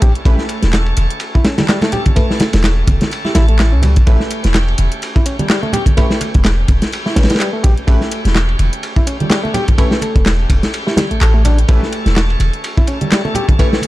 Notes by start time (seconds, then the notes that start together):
Already playing: A3 C#4 A4
0.02 A1 G4, kick, closed hi-hat, ride, low conga
0.15 closed hi-hat
0.25 A1 A3 C#4 E4 G4 B4, kick, closed hi-hat, ride
0.38 snare
0.49 closed hi-hat, ride
0.62 E1, snare, closed hi-hat
0.73 snare, clap, closed hi-hat, ride
0.86 ride
0.97 E1, closed hi-hat, ride, high conga
1.10 closed hi-hat
1.20 closed hi-hat, ride
1.35 E4, kick
1.45 C#4, snare, closed hi-hat, ride
1.58 G3, snare, closed hi-hat, ride, high conga
1.68 G3, snare, clap, closed hi-hat, ride
1.82 A3, snare, ride, muted conga
1.92 G4, closed hi-hat, ride, low conga
2.06 kick, closed hi-hat, high conga
2.16 A3 B4, kick, closed hi-hat, ride
2.31 B4, snare
2.40 A4, snare, closed hi-hat, ride, muted conga
2.53 E1, snare, closed hi-hat, ride
2.64 snare, clap, closed hi-hat, ride
2.87 E1, kick, closed hi-hat, ride, high conga
3.01 snare, closed hi-hat, high conga
3.12 closed hi-hat, ride
3.25 E4 G4, snare, muted conga
3.35 A1 E4 G4, snare, closed hi-hat, ride, high conga
3.49 A3, closed hi-hat
3.59 E4, snare, clap, closed hi-hat, ride
3.73 C#2 C#4
3.82 G3, closed hi-hat, ride, high conga, low conga
3.96 A1, kick, closed hi-hat
4.07 A1 A3 C#4 E4 G4 B4, kick, closed hi-hat, ride
4.20 snare
4.31 closed hi-hat, ride
4.44 E1, snare, closed hi-hat
4.54 snare, clap, closed hi-hat, ride
4.68 ride
4.78 E1, closed hi-hat, ride, high conga
4.92 closed hi-hat
5.02 closed hi-hat, ride
5.15 E4, kick
5.26 C#4, closed hi-hat, ride
5.39 G3, closed hi-hat, high conga
5.50 G3, snare, clap, closed hi-hat, ride
5.63 A3, muted conga
5.73 G4, closed hi-hat, ride, low conga
5.86 kick, closed hi-hat, high conga
5.97 A3 C#4 E4 G4 B4 C#5, kick, closed hi-hat, ride
6.10 B4, snare
6.21 closed hi-hat, ride, muted conga
6.34 E1, kick, closed hi-hat
6.44 snare, clap, closed hi-hat, ride
6.68 E1, kick, closed hi-hat, ride
6.82 snare, closed hi-hat
6.92 closed hi-hat, ride
7.06 E4, snare
7.16 A1 C#4 B4, snare, closed hi-hat, ride, high conga
7.23 snare, ride
7.29 G3, snare, closed hi-hat, ride
7.35 snare, ride
7.40 G3, clap, closed hi-hat, ride
7.53 A3
7.63 A1 G4, kick, closed hi-hat, ride, low conga
7.78 closed hi-hat
7.87 A1 A3 C#4 E4 G4 B4, kick, closed hi-hat, ride
8.01 snare
8.11 closed hi-hat, ride
8.25 E1, snare, closed hi-hat
8.35 snare, clap, closed hi-hat, ride
8.49 ride
8.59 E1, closed hi-hat, ride, high conga
8.73 closed hi-hat
8.83 closed hi-hat, ride
8.96 E4, kick
9.07 C#4, closed hi-hat, ride
9.20 G3, closed hi-hat, high conga
9.30 G3, snare, clap, closed hi-hat, ride
9.44 A3, muted conga
9.54 G4, closed hi-hat, ride, low conga
9.68 kick, closed hi-hat, high conga
9.78 A3 C#4 E4 G4 B4 C#5, kick, closed hi-hat, ride
9.91 B4, snare
10.02 A4, closed hi-hat, ride, muted conga
10.16 E1, kick, closed hi-hat
10.26 snare, clap, closed hi-hat, ride
10.50 E1, kick, closed hi-hat, ride
10.63 snare, closed hi-hat
10.74 closed hi-hat, ride
10.87 E4 G4, snare
10.97 G3 G4, snare, closed hi-hat, ride, high conga
11.11 A1 A3, closed hi-hat
11.21 A1 A4, clap, closed hi-hat, ride
11.34 A3
11.45 D4, closed hi-hat, ride, low conga
11.59 closed hi-hat
11.68 A1 A3 C#4 E4 G4 A4 B4, kick, closed hi-hat, ride
11.83 snare
11.93 closed hi-hat, ride
12.06 E1, snare, closed hi-hat
12.16 snare, clap, closed hi-hat, ride
12.30 ride
12.39 E1, closed hi-hat, ride, high conga
12.53 closed hi-hat
12.64 closed hi-hat, ride
12.77 E4, kick
12.87 C#4, closed hi-hat, ride
13.01 G3, closed hi-hat, high conga
13.11 G3, snare, clap, closed hi-hat, ride
13.25 A3, muted conga
13.35 G4, closed hi-hat, ride, low conga
13.49 kick, closed hi-hat, high conga
13.59 A3 C#4 E4 G4 B4 C#5, kick, closed hi-hat, ride
13.72 B4, snare
13.82 closed hi-hat, ride, muted conga